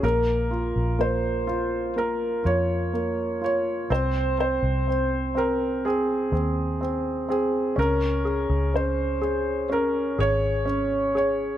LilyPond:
<<
  \new Staff \with { instrumentName = "Grand piano" } { \time 4/4 \key bes \minor \tempo 4 = 62 bes'4 c''4 bes'8 des''4 des''8 | c''8 c''4 bes'8 aes'4. aes'8 | bes'4 c''4 bes'8 des''4 des''8 | }
  \new Staff \with { instrumentName = "Upright piano" } { \time 4/4 \key bes \minor bes8 f'8 bes8 f'8 bes8 f'8 bes8 f'8 | c'8 c'8 c'8 c'8 c'8 c'8 c'8 c'8 | des'8 aes'8 des'8 aes'8 des'8 aes'8 des'8 aes'8 | }
  \new Staff \with { instrumentName = "Fingered electric bass" } { \clef bass \time 4/4 \key bes \minor bes,,8. bes,,4.~ bes,,16 f,4. | c,8. c,4.~ c,16 ees,4. | des,8. des,4.~ des,16 aes,,4. | }
>>